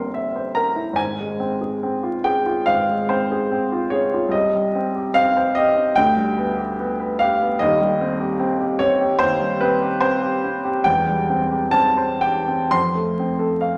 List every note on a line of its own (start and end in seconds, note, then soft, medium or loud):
0.00 0.94 G1 medium
0.00 1.01 A#3 soft
0.00 1.01 C4 soft
0.00 0.27 A#4 medium
0.00 0.56 C6 loud
0.14 0.48 E5 medium
0.36 0.69 C5 medium
0.55 0.90 A#4 medium
0.55 0.98 A#5 medium
0.76 0.98 E4 soft
0.93 2.59 G#1 medium
0.93 2.22 G#5 loud
1.20 1.53 G#3 soft
1.40 1.73 C4 medium
1.61 1.94 G#4 soft
1.83 2.16 C4 medium
2.03 2.37 F4 medium
2.24 2.58 G#4 medium
2.24 2.66 G5 medium
2.46 2.79 F4 medium
2.66 4.29 G#1 medium
2.66 3.08 F5 loud
2.89 3.22 G#3 soft
3.09 3.42 C4 medium
3.09 3.92 C5 medium
3.32 3.64 G#4 medium
3.52 3.84 C4 medium
3.72 4.04 F4 soft
3.90 4.24 G#4 medium
3.90 4.31 C#5 medium
4.14 4.33 F4 medium
4.29 5.90 C2 medium
4.29 5.13 D#5 medium
4.55 4.86 G3 soft
4.75 5.06 C4 medium
4.95 5.27 G4 medium
5.14 5.47 C4 medium
5.14 5.55 F5 loud
5.37 5.68 C5 medium
5.55 5.88 G4 medium
5.55 5.96 D#5 loud
5.76 5.96 C4 medium
5.96 7.58 D2 medium
5.96 7.20 G5 loud
6.17 6.49 G3 medium
6.37 6.70 B3 medium
6.57 6.90 G4 medium
6.79 7.12 B3 medium
7.00 7.33 B4 medium
7.19 7.53 G4 medium
7.19 7.60 F5 loud
7.41 7.61 B3 medium
7.59 9.17 D#1 medium
7.59 9.17 D#2 medium
7.59 8.80 D#5 loud
7.81 8.13 G3 medium
8.01 8.33 C4 medium
8.20 8.52 G4 medium
8.39 8.72 C4 medium
8.60 8.93 G4 medium
8.79 9.13 C4 medium
8.79 9.20 C#5 loud
9.00 9.33 G4 medium
9.19 10.82 D#2 medium
9.19 9.61 C5 loud
9.41 9.74 G3 medium
9.61 9.94 C4 medium
9.61 10.02 B4 medium
9.82 10.15 G4 medium
10.00 10.35 C4 medium
10.00 10.43 C5 loud
10.22 10.56 G4 medium
10.44 10.78 C4 medium
10.65 10.86 G4 medium
10.84 12.68 E1 medium
10.84 12.68 E2 medium
10.84 11.73 G5 loud
11.06 11.42 G3 medium
11.30 11.65 C4 medium
11.51 11.87 G4 medium
11.71 12.11 C4 medium
11.71 12.21 A5 loud
11.97 12.38 C5 medium
12.21 12.63 G4 medium
12.21 12.72 G5 loud
12.48 12.72 C4 medium
12.71 13.78 F2 medium
12.71 13.78 C6 loud
12.95 13.31 A3 medium
13.19 13.53 C4 medium
13.39 13.73 A4 medium
13.61 13.78 F5 medium